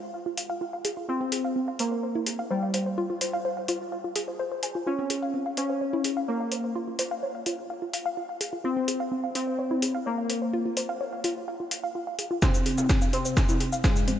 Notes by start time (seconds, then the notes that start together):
0.14 F5
0.26 F4
0.37 F5, open hi-hat
0.50 F5
0.61 F4
0.73 F5
0.85 G#4, open hi-hat
0.97 F4
1.09 C4 F4
1.21 C4
1.32 G#4, open hi-hat
1.45 F5
1.56 C4
1.68 F5
1.79 A#3 C5, open hi-hat
1.92 C5
2.03 C5
2.15 E4
2.26 G#4, open hi-hat
2.39 F5
2.50 G3 C5
2.63 F5
2.74 C5, open hi-hat
2.86 C5
2.98 F4
3.10 F4
3.21 C5, open hi-hat
3.33 F5
3.45 C5
3.57 F5
3.68 F4, open hi-hat
3.92 F5
4.04 F4
4.16 G#4, open hi-hat
4.28 C5
4.39 C5
4.52 C5
4.63 G#5, open hi-hat
4.75 F4
4.87 C#4 F4
4.99 C4
5.10 G#4, open hi-hat
5.22 F5
5.34 C4
5.46 F5
5.57 C#4 C5, open hi-hat
5.70 C5
5.81 C#5
5.93 E4
6.04 G#4, open hi-hat
6.17 F5
6.28 A#3 C#5
6.40 F5
6.52 C5, open hi-hat
6.64 C5
6.75 F4
6.88 F4
6.99 C5, open hi-hat
7.11 F5
7.23 C#5
7.35 F5
7.46 F4, open hi-hat
7.70 F5
7.82 F4
7.93 F5, open hi-hat
8.06 F5
8.17 F4
8.29 F5
8.41 G#4, open hi-hat
8.53 F4
8.64 C4 F4
8.76 C4
8.88 G#4, open hi-hat
9.00 F5
9.12 C4
9.24 F5
9.35 C4 C5, open hi-hat
9.47 C5
9.59 C#5
9.71 E4
9.82 G#4, open hi-hat
9.95 F5
10.06 A#3 C#5
10.18 F5
10.30 C5, open hi-hat
10.42 C5
10.53 F4
10.66 F4
10.77 C5, open hi-hat
10.89 F5
11.01 C#5
11.13 F5
11.24 F4, open hi-hat
11.48 F5
11.60 F4
11.71 F5, open hi-hat
11.84 F5
11.95 F4
12.07 F5
12.19 G#4, open hi-hat
12.31 F4
12.42 C3 C4 F4, kick, snare, shaker
12.54 C4, shaker
12.66 G#4, open hi-hat
12.78 F5, mid tom, shaker
12.89 C4, kick, snare, shaker
13.02 F5, shaker
13.13 C3 C4 C5, open hi-hat
13.25 C5, shaker
13.37 C5, kick, snare, shaker
13.49 E4, mid tom, shaker
13.60 G#4, open hi-hat
13.73 F5, shaker
13.84 G#2 G#3 C5, kick, snare, shaker
13.96 F5, shaker
14.08 F3 G#3 C4 C5, open hi-hat